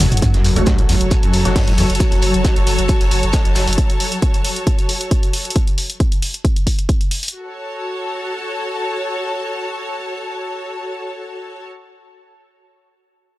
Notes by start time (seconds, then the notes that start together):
Already playing: F#3 F#4 A4 C#5 F#5
0.00 F#1 E2, open hi-hat, mid tom, shaker
0.12 F#1, closed hi-hat, mid tom, shaker
0.17 closed hi-hat
0.22 F#2 F#3 F#4, kick, closed hi-hat, sub drop, shaker
0.34 F#1 F#2, snare, closed hi-hat
0.44 F#1 A4, open hi-hat, shaker
0.56 F#1 F#3 A3 F#4 C#5, closed hi-hat
0.66 G2, kick, snare, closed hi-hat, shaker
0.79 F#1 B2, closed hi-hat
0.89 F#1 E2, open hi-hat, shaker
0.94 C#5
1.01 F#1, closed hi-hat
1.11 F#2, kick, closed hi-hat, shaker
1.23 F#1 F#2 A5, closed hi-hat
1.33 F#1, snare, open hi-hat, shaker
1.45 F#1 F#3 A3 F#4 C#5, snare, closed hi-hat
1.56 G2, kick, snare, closed hi-hat, open hi-hat
1.67 F#1 B2, snare, closed hi-hat
1.78 F#1 E2, open hi-hat, shaker
1.90 F#1, closed hi-hat
1.95 closed hi-hat
2.00 kick, closed hi-hat, shaker
2.12 F#1, closed hi-hat
2.22 F#1, open hi-hat, shaker
2.34 F#1, closed hi-hat
2.44 kick, snare, closed hi-hat, shaker
2.56 F#1, closed hi-hat
2.67 F#1, open hi-hat, shaker
2.79 F#1, closed hi-hat
2.89 kick, closed hi-hat, shaker
3.01 F#1, closed hi-hat
3.11 F#1, open hi-hat, shaker
3.23 F#1, closed hi-hat
3.33 kick, snare, closed hi-hat, shaker
3.45 F#1, snare, closed hi-hat
3.55 F#1, snare, open hi-hat, shaker
3.67 F#1, snare, open hi-hat
3.73 closed hi-hat
3.78 kick, closed hi-hat
3.90 closed hi-hat
4.00 open hi-hat
4.12 closed hi-hat
4.22 kick, closed hi-hat
4.34 closed hi-hat
4.45 open hi-hat
4.56 closed hi-hat
4.67 kick, closed hi-hat
4.79 closed hi-hat
4.89 open hi-hat
5.01 closed hi-hat
5.11 kick, closed hi-hat
5.23 closed hi-hat
5.33 open hi-hat
5.45 closed hi-hat
5.50 closed hi-hat
5.56 kick, closed hi-hat
5.67 closed hi-hat
5.78 open hi-hat
5.90 closed hi-hat
6.00 kick, closed hi-hat
6.12 closed hi-hat
6.22 open hi-hat
6.34 closed hi-hat
6.45 kick, closed hi-hat
6.56 closed hi-hat
6.67 kick, open hi-hat
6.79 closed hi-hat
6.89 kick, closed hi-hat
7.01 closed hi-hat
7.11 open hi-hat
7.23 open hi-hat
7.28 closed hi-hat
7.33 F#4
7.41 A4
7.47 C#5
7.54 A5